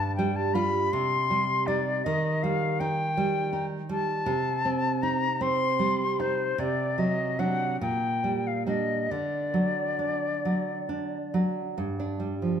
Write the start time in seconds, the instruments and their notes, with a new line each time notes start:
Already playing: nylon-string guitar G2, flute A5
0.16 nylon-string guitar G3, flute G5
0.36 flute A5
0.54 nylon-string guitar G3 F4, flute B5
0.93 nylon-string guitar C3, flute C6
1.30 nylon-string guitar G3
1.67 nylon-string guitar G3 D#4, flute D5
2.04 nylon-string guitar D#3, flute D#5
2.43 nylon-string guitar G3, flute F5
2.80 nylon-string guitar D#4, flute G5
3.17 nylon-string guitar G3
3.53 nylon-string guitar D#4
3.89 nylon-string guitar G3, flute A5
4.26 nylon-string guitar C3
4.65 nylon-string guitar C4
5.03 nylon-string guitar D#4, flute A#5
5.41 nylon-string guitar C4, flute C6
5.79 nylon-string guitar G3
6.20 nylon-string guitar D#4, flute C5
6.58 nylon-string guitar C3, flute D5
6.98 nylon-string guitar F#3, flute D#5
7.39 nylon-string guitar F#3 D4, flute F#5
7.81 nylon-string guitar A#2, flute G5
8.24 nylon-string guitar G3
8.47 flute F5
8.67 nylon-string guitar G3 D4, flute D#5
9.11 nylon-string guitar D3, flute D5
9.54 nylon-string guitar F#3
9.99 nylon-string guitar D4
10.45 nylon-string guitar F#3
10.89 nylon-string guitar D4
11.34 nylon-string guitar F#3
11.78 nylon-string guitar G2
12.00 nylon-string guitar D4
12.20 nylon-string guitar G3
12.42 nylon-string guitar F3